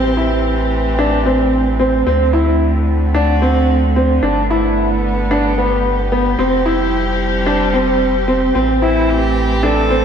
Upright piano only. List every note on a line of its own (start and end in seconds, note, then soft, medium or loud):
0.17 0.53 E4 medium
0.99 1.17 D4 medium
1.26 1.62 C4 medium
1.80 1.98 C4 medium
2.07 2.25 C4 medium
2.33 2.69 E4 medium
3.15 3.33 D4 medium
3.42 3.78 C4 medium
3.96 4.14 C4 medium
4.23 4.41 D4 medium
4.50 4.86 E4 medium
5.31 5.49 D4 medium
5.58 5.94 B3 medium
6.12 6.30 B3 medium
6.39 6.57 C4 medium
6.66 7.02 E4 medium
7.46 7.65 D4 medium
7.74 8.10 C4 medium
8.28 8.46 C4 medium
8.55 8.73 C4 medium
8.82 9.18 E4 medium
9.63 9.81 D4 medium
9.90 10.05 C4 medium